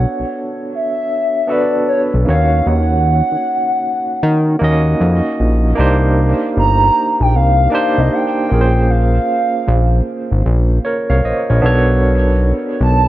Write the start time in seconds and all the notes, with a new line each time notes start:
Already playing: B3 D4 F#4 A4 C#5 F#5
0.20 B1
0.75 E5
1.47 B3 D4 F#4 A4
1.51 B4 D5
1.88 C#5
2.14 B1
2.25 D#2 A#3 C#4 D#4 F#4 F5
2.30 C#5
2.66 D#2 F#5
3.32 D#3
4.23 D#3
4.59 D#2 A#3 C#4 D#4 F#4
4.64 D#5
5.01 F2
5.40 A#1
5.75 C2 A#3 D4 D#4 G4
5.80 C5
6.57 G1 A#5
7.20 A#1 G5
7.35 C2 F5
7.70 A#3 D4 D#4 G4
7.75 C5
7.98 C2 D#5
8.13 G5
8.49 A#1 A#3 C#4 F4 G#4
8.54 A#4
8.61 C5
8.90 F5
9.68 A#1
10.31 G#1
10.46 A#1
10.85 A#4 C#5
11.10 C2 C#5 F5
11.24 A#1 C5 D#5
11.50 A#1 A#4 C#5
11.61 B1 B3 D4 F#4 A4
11.66 C#5
12.81 B1 A5